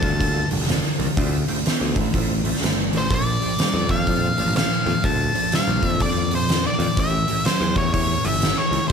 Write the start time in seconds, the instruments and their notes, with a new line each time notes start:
Already playing: lead electric guitar A5
0.02 picked electric bass D2, distorted electric guitar G2 D3, tonewheel organ A#3 D4 F4 A4, kick, open hi-hat
0.19 distorted electric guitar G2 D3, tonewheel organ A#3 D4 F4 A4, kick, open hi-hat
0.51 picked electric bass F1, distorted electric guitar G2 D3, tonewheel organ A#3 D4 F4 A4, open hi-hat
0.60 picked electric bass F1, snare
0.68 distorted electric guitar G2 D3, tonewheel organ A#3 D4 F4 A4, snare, open hi-hat
0.98 picked electric bass C2, distorted electric guitar G2 D3, tonewheel organ A#3 D4 F4 A#4, open hi-hat
1.16 picked electric bass D2, distorted electric guitar D3 A3, tonewheel organ C4 E4 F4 A4, kick, open hi-hat
1.47 distorted electric guitar D3 A3, tonewheel organ C4 E4 F4 G4, open hi-hat
1.65 distorted electric guitar D3 B3, tonewheel organ C4 E4 F4 C5, snare, open hi-hat
1.81 picked electric bass D2
1.96 picked electric bass A1, distorted electric guitar D3 A3, tonewheel organ C4 E4 F4 A4, kick, open hi-hat
2.14 distorted electric guitar D3 A3, tonewheel organ C4 E4 F4 A4, kick, open hi-hat
2.44 distorted electric guitar D3 A3, tonewheel organ C4 E4 F4 A4, open hi-hat
2.55 snare
2.60 picked electric bass G1, distorted electric guitar D3 A3, tonewheel organ C4 E4 F4 A4, open hi-hat
2.64 snare
2.91 picked electric bass A1, distorted electric guitar D3 A3, tonewheel organ C4 F4 A4, snare, open hi-hat
2.95 tonewheel organ E4, lead electric guitar C5
3.09 picked electric bass A#1, distorted electric guitar A#2 F3, tonewheel organ C4 D4 F4 A4, kick, open hi-hat
3.14 lead electric guitar D5
3.40 distorted electric guitar A#2 F3, tonewheel organ C4 D4 G4, open hi-hat
3.44 tonewheel organ F4
3.58 distorted electric guitar A#2 G3, tonewheel organ C4 D4 F4 C5, snare, open hi-hat
3.74 picked electric bass F2
3.88 picked electric bass F2, distorted electric guitar A#2 F3, tonewheel organ C4 D4 F4 A4, lead electric guitar F5, kick, open hi-hat
4.07 distorted electric guitar A#2 F3, tonewheel organ C4 D4 F4 A4, kick, open hi-hat
4.37 picked electric bass A1, distorted electric guitar A#2 F3, tonewheel organ C4 D4 F4 A4, open hi-hat
4.46 picked electric bass A1
4.54 distorted electric guitar A#2 F3, tonewheel organ C4 D4 F4 C5, lead electric guitar F5, snare, open hi-hat
4.85 picked electric bass F2, distorted electric guitar A#2 F3, tonewheel organ C4 D4 F4 A4, open hi-hat
5.03 picked electric bass D2, distorted electric guitar A#2 F3, tonewheel organ C4 D4 F4 A4, lead electric guitar A5, kick, open hi-hat
5.34 distorted electric guitar A#2 F3, tonewheel organ C4 D4 F4 A4, open hi-hat
5.52 distorted electric guitar A#2 G3, tonewheel organ C4 D4 F4 G4, lead electric guitar F5, snare, open hi-hat
5.68 picked electric bass A#1
5.82 picked electric bass F2, distorted electric guitar A#2 F3, tonewheel organ C4 D4 F4 A4, kick, open hi-hat
6.00 distorted electric guitar A#2 F3, tonewheel organ C4 D4 F4, lead electric guitar D5, kick, open hi-hat
6.05 tonewheel organ A4
6.31 distorted electric guitar A#2 F3, tonewheel organ C4 D4 A4, open hi-hat
6.35 tonewheel organ F4, lead electric guitar C5
6.49 distorted electric guitar A#2 F3, tonewheel organ C4 D4 F4 A4, snare, open hi-hat
6.67 lead electric guitar D5
6.79 picked electric bass F2, distorted electric guitar A#2 F3, tonewheel organ C4 D4 F4 A4, open hi-hat
6.97 picked electric bass A1, distorted electric guitar A2 E3, tonewheel organ C#4 E4 G4 A#4, lead electric guitar E5, kick, open hi-hat
7.28 distorted electric guitar A2 E3, tonewheel organ C#4 E4 G4 A#4, open hi-hat
7.45 distorted electric guitar A2 F#3, tonewheel organ C#4 E4 G4 C#5, lead electric guitar C5, snare, open hi-hat
7.61 picked electric bass E2
7.75 picked electric bass E2, distorted electric guitar A2 E3, tonewheel organ C#4 E4 G4 A#4, lead electric guitar C#5, kick, open hi-hat
7.93 distorted electric guitar A2 E3, tonewheel organ C#4 E4 G4 C#5, lead electric guitar C#5, kick, open hi-hat
8.23 picked electric bass G1, distorted electric guitar A2 E3, tonewheel organ C#4 E4 G4 A4, lead electric guitar E5, open hi-hat
8.33 picked electric bass G1
8.40 distorted electric guitar A2 E3, tonewheel organ C#4 E4 G4 A4, snare, open hi-hat
8.58 lead electric guitar C#5
8.71 picked electric bass C#2, distorted electric guitar A2 E3, tonewheel organ C#4 E4 G4 A#4, open hi-hat
8.88 lead electric guitar D5